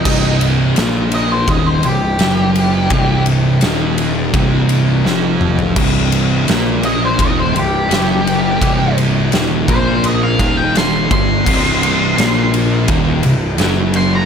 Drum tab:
CC |x---------------|----------------|x---------------|----------------|
RD |--x-x-x-x-x-x-x-|x-x-x-x-x-x-----|--x-x-x-x-x-x-x-|x-x-x-x-x-x-x-x-|
SD |----o-------o---|----o-------o---|----o-------o---|----o-------o---|
T2 |----------------|--------------o-|----------------|----------------|
FT |----------------|---------------o|----------------|----------------|
BD |o-------o-------|o-------o-------|o-------o-------|o-----o---o---o-|

CC |x---------------|
RD |--x-x-x-x-x-x-x-|
SD |----o-------o---|
T2 |----------------|
FT |----------------|
BD |o-------o-------|